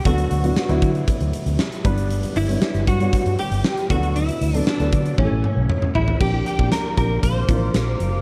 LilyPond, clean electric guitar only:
\new Staff \with { instrumentName = "Clean electric guitar" } { \time 4/4 \key d \major \tempo 4 = 117 fis'2 r2 | r8 e'4 fis'4 g'4 fis'8 | e'4 d'4 cis'4. e'8 | g'8 g'8 bes'8 bes'8 c''2 | }